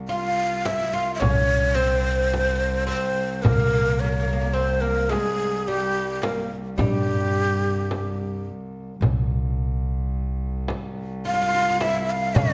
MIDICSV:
0, 0, Header, 1, 7, 480
1, 0, Start_track
1, 0, Tempo, 1115242
1, 1483, Time_signature, 10, 3, 24, 8
1, 5394, End_track
2, 0, Start_track
2, 0, Title_t, "Ney"
2, 0, Program_c, 0, 77
2, 36, Note_on_c, 0, 77, 92
2, 283, Note_on_c, 0, 76, 81
2, 289, Note_off_c, 0, 77, 0
2, 404, Note_on_c, 0, 77, 88
2, 410, Note_off_c, 0, 76, 0
2, 492, Note_off_c, 0, 77, 0
2, 495, Note_on_c, 0, 76, 69
2, 523, Note_on_c, 0, 73, 100
2, 529, Note_off_c, 0, 76, 0
2, 753, Note_on_c, 0, 72, 98
2, 759, Note_off_c, 0, 73, 0
2, 1235, Note_off_c, 0, 72, 0
2, 1238, Note_on_c, 0, 72, 84
2, 1474, Note_on_c, 0, 70, 83
2, 1480, Note_off_c, 0, 72, 0
2, 1721, Note_on_c, 0, 73, 76
2, 1727, Note_off_c, 0, 70, 0
2, 1954, Note_on_c, 0, 72, 85
2, 1960, Note_off_c, 0, 73, 0
2, 2069, Note_on_c, 0, 70, 82
2, 2076, Note_off_c, 0, 72, 0
2, 2197, Note_on_c, 0, 68, 85
2, 2203, Note_off_c, 0, 70, 0
2, 2444, Note_on_c, 0, 67, 85
2, 2450, Note_off_c, 0, 68, 0
2, 2683, Note_on_c, 0, 70, 75
2, 2689, Note_off_c, 0, 67, 0
2, 2803, Note_off_c, 0, 70, 0
2, 2917, Note_on_c, 0, 67, 81
2, 3623, Note_off_c, 0, 67, 0
2, 4847, Note_on_c, 0, 77, 107
2, 5084, Note_on_c, 0, 76, 90
2, 5090, Note_off_c, 0, 77, 0
2, 5211, Note_on_c, 0, 77, 104
2, 5218, Note_off_c, 0, 76, 0
2, 5328, Note_on_c, 0, 73, 100
2, 5335, Note_off_c, 0, 77, 0
2, 5394, Note_off_c, 0, 73, 0
2, 5394, End_track
3, 0, Start_track
3, 0, Title_t, "Oud"
3, 0, Program_c, 1, 24
3, 39, Note_on_c, 1, 65, 79
3, 397, Note_off_c, 1, 65, 0
3, 402, Note_on_c, 1, 65, 78
3, 514, Note_off_c, 1, 65, 0
3, 516, Note_on_c, 1, 61, 78
3, 752, Note_off_c, 1, 61, 0
3, 754, Note_on_c, 1, 60, 73
3, 1228, Note_off_c, 1, 60, 0
3, 1234, Note_on_c, 1, 60, 78
3, 1477, Note_on_c, 1, 58, 69
3, 1486, Note_off_c, 1, 60, 0
3, 1510, Note_off_c, 1, 58, 0
3, 1516, Note_on_c, 1, 58, 48
3, 1542, Note_off_c, 1, 58, 0
3, 1547, Note_on_c, 1, 58, 55
3, 1575, Note_off_c, 1, 58, 0
3, 1580, Note_on_c, 1, 58, 50
3, 1613, Note_off_c, 1, 58, 0
3, 1621, Note_on_c, 1, 58, 47
3, 1636, Note_off_c, 1, 58, 0
3, 1641, Note_on_c, 1, 58, 44
3, 1675, Note_off_c, 1, 58, 0
3, 1680, Note_on_c, 1, 58, 54
3, 1706, Note_off_c, 1, 58, 0
3, 1711, Note_on_c, 1, 58, 42
3, 1735, Note_off_c, 1, 58, 0
3, 1740, Note_on_c, 1, 58, 51
3, 1768, Note_off_c, 1, 58, 0
3, 1773, Note_on_c, 1, 58, 41
3, 1801, Note_off_c, 1, 58, 0
3, 1806, Note_on_c, 1, 58, 55
3, 1835, Note_off_c, 1, 58, 0
3, 1840, Note_on_c, 1, 58, 45
3, 1857, Note_off_c, 1, 58, 0
3, 1862, Note_on_c, 1, 58, 52
3, 1895, Note_off_c, 1, 58, 0
3, 1900, Note_on_c, 1, 58, 47
3, 1935, Note_off_c, 1, 58, 0
3, 1951, Note_on_c, 1, 60, 74
3, 2074, Note_on_c, 1, 58, 65
3, 2081, Note_off_c, 1, 60, 0
3, 2190, Note_off_c, 1, 58, 0
3, 2192, Note_on_c, 1, 56, 77
3, 2443, Note_off_c, 1, 56, 0
3, 2444, Note_on_c, 1, 55, 65
3, 2674, Note_off_c, 1, 55, 0
3, 2676, Note_on_c, 1, 58, 61
3, 2791, Note_off_c, 1, 58, 0
3, 2917, Note_on_c, 1, 55, 60
3, 3623, Note_off_c, 1, 55, 0
3, 4843, Note_on_c, 1, 65, 79
3, 4875, Note_off_c, 1, 65, 0
3, 4880, Note_on_c, 1, 65, 60
3, 4908, Note_off_c, 1, 65, 0
3, 4913, Note_on_c, 1, 65, 66
3, 4938, Note_off_c, 1, 65, 0
3, 4943, Note_on_c, 1, 65, 59
3, 4963, Note_off_c, 1, 65, 0
3, 4968, Note_on_c, 1, 65, 68
3, 4997, Note_off_c, 1, 65, 0
3, 5002, Note_on_c, 1, 65, 66
3, 5027, Note_off_c, 1, 65, 0
3, 5033, Note_on_c, 1, 65, 74
3, 5069, Note_off_c, 1, 65, 0
3, 5081, Note_on_c, 1, 64, 77
3, 5314, Note_off_c, 1, 64, 0
3, 5315, Note_on_c, 1, 61, 80
3, 5394, Note_off_c, 1, 61, 0
3, 5394, End_track
4, 0, Start_track
4, 0, Title_t, "Cello"
4, 0, Program_c, 2, 42
4, 0, Note_on_c, 2, 36, 65
4, 3887, Note_off_c, 2, 36, 0
4, 3890, Note_on_c, 2, 36, 69
4, 5394, Note_off_c, 2, 36, 0
4, 5394, End_track
5, 0, Start_track
5, 0, Title_t, "Upright bass"
5, 0, Program_c, 3, 32
5, 525, Note_on_c, 3, 36, 84
5, 1251, Note_off_c, 3, 36, 0
5, 1481, Note_on_c, 3, 36, 88
5, 2209, Note_off_c, 3, 36, 0
5, 2918, Note_on_c, 3, 43, 94
5, 3648, Note_off_c, 3, 43, 0
5, 3877, Note_on_c, 3, 36, 89
5, 4607, Note_off_c, 3, 36, 0
5, 5318, Note_on_c, 3, 36, 92
5, 5394, Note_off_c, 3, 36, 0
5, 5394, End_track
6, 0, Start_track
6, 0, Title_t, "Darbuka"
6, 285, Note_on_c, 9, 63, 69
6, 328, Note_off_c, 9, 63, 0
6, 526, Note_on_c, 9, 64, 78
6, 569, Note_off_c, 9, 64, 0
6, 1005, Note_on_c, 9, 63, 69
6, 1048, Note_off_c, 9, 63, 0
6, 1488, Note_on_c, 9, 64, 96
6, 1531, Note_off_c, 9, 64, 0
6, 2205, Note_on_c, 9, 63, 60
6, 2248, Note_off_c, 9, 63, 0
6, 2682, Note_on_c, 9, 63, 61
6, 2725, Note_off_c, 9, 63, 0
6, 2928, Note_on_c, 9, 64, 81
6, 2971, Note_off_c, 9, 64, 0
6, 3405, Note_on_c, 9, 63, 60
6, 3448, Note_off_c, 9, 63, 0
6, 3888, Note_on_c, 9, 64, 81
6, 3931, Note_off_c, 9, 64, 0
6, 4606, Note_on_c, 9, 63, 57
6, 4649, Note_off_c, 9, 63, 0
6, 5081, Note_on_c, 9, 63, 61
6, 5124, Note_off_c, 9, 63, 0
6, 5319, Note_on_c, 9, 64, 74
6, 5362, Note_off_c, 9, 64, 0
6, 5394, End_track
7, 0, Start_track
7, 0, Title_t, "Frame drum"
7, 281, Note_on_c, 9, 64, 69
7, 324, Note_off_c, 9, 64, 0
7, 524, Note_on_c, 9, 64, 86
7, 567, Note_off_c, 9, 64, 0
7, 1006, Note_on_c, 9, 64, 62
7, 1049, Note_off_c, 9, 64, 0
7, 1483, Note_on_c, 9, 64, 82
7, 1526, Note_off_c, 9, 64, 0
7, 2205, Note_on_c, 9, 64, 62
7, 2248, Note_off_c, 9, 64, 0
7, 2683, Note_on_c, 9, 64, 75
7, 2726, Note_off_c, 9, 64, 0
7, 2922, Note_on_c, 9, 64, 84
7, 2965, Note_off_c, 9, 64, 0
7, 3404, Note_on_c, 9, 64, 65
7, 3447, Note_off_c, 9, 64, 0
7, 3883, Note_on_c, 9, 64, 75
7, 3926, Note_off_c, 9, 64, 0
7, 4598, Note_on_c, 9, 64, 73
7, 4641, Note_off_c, 9, 64, 0
7, 5082, Note_on_c, 9, 64, 68
7, 5125, Note_off_c, 9, 64, 0
7, 5320, Note_on_c, 9, 64, 87
7, 5363, Note_off_c, 9, 64, 0
7, 5394, End_track
0, 0, End_of_file